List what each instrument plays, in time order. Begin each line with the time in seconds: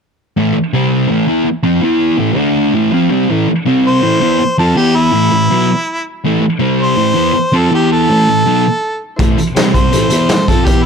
0.37 distorted electric guitar A2 E3 A3
0.54 muted distorted electric guitar stroke
0.73 distorted electric guitar C3 G3 C4
1.08 distorted electric guitar A2 E3 A3
1.27 distorted electric guitar E3 B3 E4
1.45 muted distorted electric guitar stroke
1.63 distorted electric guitar F3 C4 F4
1.82 distorted electric guitar E3 B3 E4
2.18 distorted electric guitar A2 E3 A3
2.36 distorted electric guitar D3 A3 D4
2.74 distorted electric guitar A2 E3 A3
2.92 distorted electric guitar F3 C4 F4
3.10 distorted electric guitar C3 G3 C4
3.30 distorted electric guitar A2 E3 A3
3.48 muted distorted electric guitar stroke
3.65 distorted electric guitar C3 G3 C4
3.87 harmonica C5
4.02 distorted electric guitar A2 E3 A3
4.21 distorted electric guitar E3 B3 E4
4.40 muted distorted electric guitar stroke
4.58 distorted electric guitar F3 C4 F4, harmonica A4
4.76 distorted electric guitar E3 B3 E4, harmonica G4
4.96 harmonica E4
5.12 distorted electric guitar A2 E3 A3
5.31 distorted electric guitar A2 E3
5.50 distorted electric guitar B2 F#3 B3
6.24 distorted electric guitar A2 E3 A3
6.41 muted distorted electric guitar stroke
6.59 distorted electric guitar C3 G3 C4
6.83 harmonica C5
6.96 distorted electric guitar A2 E3 A3
7.14 distorted electric guitar E3 B3 E4
7.34 muted distorted electric guitar stroke
7.52 distorted electric guitar F3 C4 F4
7.57 harmonica A4
7.71 distorted electric guitar E3 B3 E4, harmonica G4
7.92 harmonica A4
8.10 distorted electric guitar A2 E3 A3
8.28 distorted electric guitar A2 E3
8.46 distorted electric guitar B2 F#3 B3
9.16 distorted electric guitar A2 E3 A3, transistor combo organ E4 A4 C5, kick, closed hi-hat
9.38 muted distorted electric guitar stroke, closed hi-hat
9.54 distorted electric guitar C3 G3 C4, transistor combo organ C4 G4 C5, snare, closed hi-hat
9.74 harmonica C5, kick, closed hi-hat
9.92 distorted electric guitar A2 E3 A3, transistor combo organ C4 E4 A4, closed hi-hat
10.10 distorted electric guitar E3 B3 E4, closed hi-hat
10.29 transistor combo organ C4 E4 A4, muted distorted electric guitar stroke, snare, closed hi-hat
10.48 distorted electric guitar F3 C4 F4, harmonica A4, kick, closed hi-hat
10.66 distorted electric guitar E3 B3 E4, transistor combo organ B3 E4 B4, harmonica G4, kick, closed hi-hat